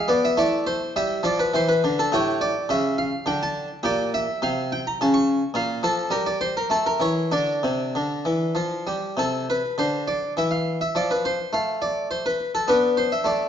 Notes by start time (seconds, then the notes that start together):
Already playing: F5
0.08 B3 D5
0.25 E5
0.37 A3 E4 D5
0.67 C5
0.96 G3 E5
1.23 F3 D5
1.39 B4
1.54 E3 C5
1.69 B4
1.84 D3
1.99 A4
2.12 A2 G4 C#5
2.41 D5
2.69 C#3 E5
2.98 F5
3.26 D3 G5
3.43 A5
3.83 A#2 G4 D5
4.14 E5
4.42 C3 F5
4.72 G5
4.87 A#5
5.01 C#3 A5
5.14 C#6
5.54 A#2 F4 F5
5.83 F3 A4
6.10 G3 A#4
6.26 D5
6.41 C5
6.57 A#4
6.70 A3 A4
6.86 A#4
7.00 E3 C#5
7.32 D3 D4 D5
7.63 C3
7.95 D3
8.25 E3
8.55 F3
8.87 G3
9.17 C3 A4
9.50 B4
9.78 D3 C5
10.08 D5
10.37 E3 E5
10.51 F5
10.81 E5
10.95 F3 D5
11.11 B4
11.25 C5
11.53 A3 F5
11.82 D5
12.11 C5
12.26 B4
12.55 A4
12.68 B3 D4 B4
12.97 C5
13.12 E5
13.24 A3 D5